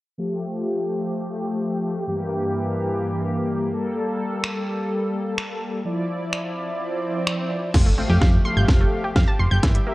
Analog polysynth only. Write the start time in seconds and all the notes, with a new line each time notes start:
0.18 F3 A3 G4
2.07 G2 E3 A#3 G4
3.72 G3 A#3 A4
5.85 F3 E4 D5
7.74 A3 G4 F5
7.98 A3 G4 F5
8.45 A3 G4 F5
9.63 A#3 G4 E5
9.87 A#3 G4 E5